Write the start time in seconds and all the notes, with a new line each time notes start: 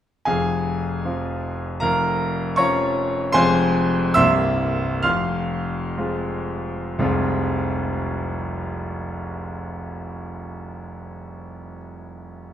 0.25 F1 F2 G#4 F5 G#5
1.05 F3 C4 F4
1.80 F1 F2 A#4 F5 A#5
2.56 F3 C#4 F4 C#5 A#5 C#6
3.32 F1 F2 G#3 C4 F4 C5 G#5 C6
4.14 C1 C2 A#3 C4 G4 E5 C6 E6
5.03 F1 F2 F5 C6 F6
5.97 G#3 C4 F4
6.99 F1 C2 F3 G#3 C4 F4